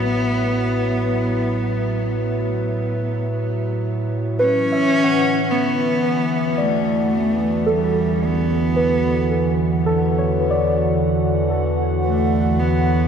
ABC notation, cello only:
X:1
M:4/4
L:1/8
Q:1/4=55
K:Edor
V:1 name="Cello"
B,6 z2 | C2 B,2 A,2 G, B,- | B,2 z4 A, B, |]